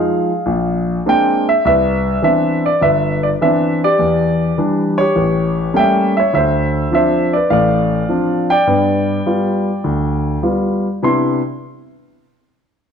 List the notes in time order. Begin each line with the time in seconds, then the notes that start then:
Already playing: F3 G#3 D#4 G#4 F5
0.46 A#1
1.06 G#3 A#3 C4 D4 G5
1.49 E5
1.65 C2 B4 E5
2.22 E3 B3 C4 D4 E5
2.66 D5
2.81 G1 B4 E5
3.23 D5
3.41 E3 B3 C4 D4 E5
3.84 G4 D5
3.99 E2
4.58 E3 G3 D4
4.98 G4 C#5
5.16 A1
5.74 G3 A3 A#3 C#4 G5
5.79 E5
6.17 C#5 E5
6.33 D2 C5 E5
6.91 F3 C4 D4 E5
6.96 C5
7.33 B4 D5
7.50 A1 A2 D5 F5
8.09 F3 C4 D4
8.50 D5 G5
8.67 G2 B3
9.26 G3 B3 F4
9.84 D2
10.43 G3 B3 F4
11.03 C3 B3 D4 E4 C6